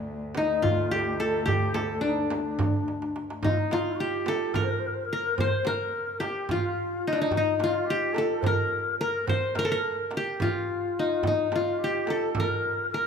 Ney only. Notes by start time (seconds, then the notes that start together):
0.38 D#4
0.64 F4
0.93 A4
0.97 G4
1.21 A4
1.47 G4
1.75 A4
1.82 G4
1.89 A4
2.03 D4
2.09 D#4
2.17 D4 D#4
3.41 D#4
3.49 F4
3.57 D#4
3.98 G4
4.53 A#4
4.63 C5
4.70 A#4
4.79 C5
4.86 A#4
4.94 C5
5.01 C5
5.05 A#4
5.36 C5
5.64 C5
5.68 A#4
6.19 G4 A4
6.48 F4 G4
7.15 D#4
7.31 D#4
7.58 F4
7.85 G4
8.13 A4
8.42 C5
8.47 A#4
8.99 A#4 C5
9.26 C5
9.55 A#4
9.68 A#4
10.39 F4
11.22 D#4 F4
11.51 F4
11.78 G4
12.07 A4
12.35 A#4
12.89 A#4